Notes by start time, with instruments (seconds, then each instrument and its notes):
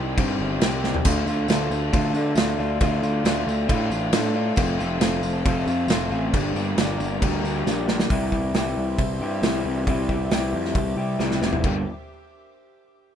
Already playing: picked electric bass C2, clean electric guitar D#3 G3 C4 G4, analog synth pad G4 C5 D#5 C6
0.17 picked electric bass G2, clean electric guitar C3 D#3 G3 C4 G4, kick, crash
0.39 picked electric bass G1, clean electric guitar G3 C4 G4
0.61 picked electric bass C2, clean electric guitar D#3 G3 C4 G4, snare, crash
0.84 clean electric guitar G3 C4 G4, snare
0.94 floor tom
1.04 picked electric bass D2, clean electric guitar D3 A3 D4 F4, analog synth pad F4 A4 D5 A5, kick, tambourine, splash, crash
1.26 picked electric bass D2, clean electric guitar A3 D4 F4, tambourine
1.48 picked electric bass D2, clean electric guitar D3 A3 D4 F4, snare, tambourine, crash
1.71 picked electric bass D2, tambourine
1.93 picked electric bass D2, clean electric guitar D3 A3 D4 F4, kick, tambourine, crash
2.14 picked electric bass D3, clean electric guitar A3 D4 F4, tambourine
2.35 picked electric bass D2, clean electric guitar D3 A3 D4 F4, snare, tambourine, crash
2.59 picked electric bass D2, clean electric guitar A3 D4 F4, tambourine
2.81 picked electric bass D2, clean electric guitar D3 A3 D4 F4, analog synth pad G5, kick, tambourine, crash
3.02 picked electric bass D2, clean electric guitar A3 D4 F4, tambourine
3.24 picked electric bass D2, clean electric guitar D3 A3 D4 F4, snare, tambourine, crash
3.47 picked electric bass D2, tambourine
3.68 picked electric bass A2, clean electric guitar D3 A3 D4 F4, kick, tambourine, crash
3.90 picked electric bass A1, clean electric guitar A3 D4 F4, tambourine
4.13 picked electric bass A2, clean electric guitar D3 A3 D4 F4, snare, tambourine, crash
4.34 clean electric guitar A3 D4 F4
4.56 picked electric bass F1, clean electric guitar F2 C3 F3 A3 C4 F4, analog synth pad A4 C5 A5, kick, tambourine, crash
4.78 picked electric bass F1, clean electric guitar F3 A3 C4 F4, tambourine
5.00 picked electric bass F1, clean electric guitar F3 A3 C4 F4, snare, tambourine, crash
5.23 picked electric bass F1, tambourine
5.45 picked electric bass F1, clean electric guitar F2 C3 F3 A3 C4 F4, kick, tambourine, crash
5.67 picked electric bass F2, clean electric guitar F3 A3 C4 F4, tambourine
5.88 picked electric bass F1, clean electric guitar F3 A3 C4 F4, snare, tambourine, crash
6.11 picked electric bass A1, clean electric guitar F3 A3 C4 F4, tambourine
6.33 picked electric bass G1, clean electric guitar G2 D3 G3 A#3 D4 G4, analog synth pad G4 A#4 D5 A#5, kick, tambourine, crash
6.55 picked electric bass G1, clean electric guitar G3 A#3 D4 G4, tambourine
6.77 picked electric bass G1, clean electric guitar G3 A#3 D4 G4, snare, tambourine, crash
6.99 picked electric bass G1, tambourine
7.22 picked electric bass D2, clean electric guitar G2 D3 G3 A#3 D4 G4, kick, tambourine, crash
7.43 picked electric bass D2, clean electric guitar G3 A#3 D4 G4, tambourine
7.66 picked electric bass A#1, clean electric guitar G3 A#3 D4 G4, snare, tambourine
7.88 clean electric guitar G3 A#3 D4 G4, snare, tambourine
8.00 snare
8.10 picked electric bass C2, clean electric guitar C3 E3 G3 E4 G4, analog synth pad G4 C5 E5 C6, kick, open hi-hat
8.32 clean electric guitar G3 E4 G4, kick
8.54 picked electric bass C2, clean electric guitar E3 G3 E4 G4, snare, open hi-hat
8.77 picked electric bass C2
8.98 picked electric bass C2, kick, open hi-hat
9.20 picked electric bass G2, clean electric guitar E4 G4
9.24 clean electric guitar G3
9.42 picked electric bass C2, clean electric guitar C3 E3 G3 E4 G4, snare, open hi-hat
9.64 picked electric bass C2, clean electric guitar G3 E4 G4
9.86 picked electric bass C2, clean electric guitar C3 E3 G3 E4 G4, analog synth pad D6, kick, open hi-hat
10.09 clean electric guitar G3 E4 G4, kick
10.31 picked electric bass C2, clean electric guitar E3 G3 E4 G4, snare, open hi-hat
10.53 picked electric bass F2
10.65 snare
10.75 picked electric bass C2, kick, open hi-hat
10.97 picked electric bass C2, clean electric guitar G3 E4 G4
11.19 picked electric bass C2, clean electric guitar C3 E3 G3 E4 G4, snare
11.31 snare
11.42 picked electric bass F1, clean electric guitar G3 E4 G4, snare
11.53 floor tom
11.63 picked electric bass G1, clean electric guitar G2 D3 G3 A#3 D4 G4, kick, crash